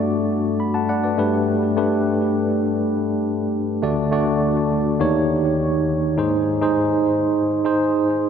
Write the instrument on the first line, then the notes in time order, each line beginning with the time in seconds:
tine electric piano
Already playing: G2 A3 D4 F#4 D5
0.60 B5
0.74 F#5 A5
0.89 D5 F#5
1.03 B4 D5
1.18 G2 A3 D4 G4 B4
1.77 A3 D4 G4 B4
3.82 D2 D3 A3 D4 F#4 D5
4.11 A3 D4 F#4 D5
5.00 D#2 D#3 A#3 D#4 G4 C#5
6.18 G#2 D#4 G#4 C5
6.61 D#4 G#4 C5
7.65 D#4 G#4 C5